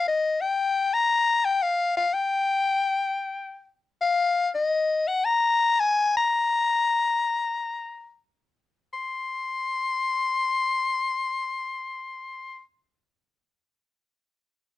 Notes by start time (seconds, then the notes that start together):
0.08 D#5
0.41 G5
0.94 A#5
1.45 G5
1.62 F5
1.97 F5
2.14 G5
4.01 F5
4.54 D#5
5.07 F#5
5.25 A#5
5.80 G#5
6.17 A#5
8.93 C6